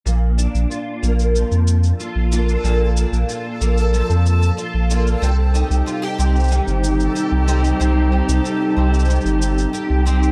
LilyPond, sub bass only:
\new Staff \with { instrumentName = "Sub bass" } { \clef bass \time 4/4 \key bes \major \tempo 4 = 93 bes,,8. bes,,16 r8 bes,,8. f,8. r16 bes,,8. | bes,,8. bes,,16 r8 bes,,8. f,8. r16 bes,,8. | c,8. c,16 r8 c,8. g,,8. r16 c,8. | c,8. c,16 r8 c,8. g,,8. r16 c,8. | }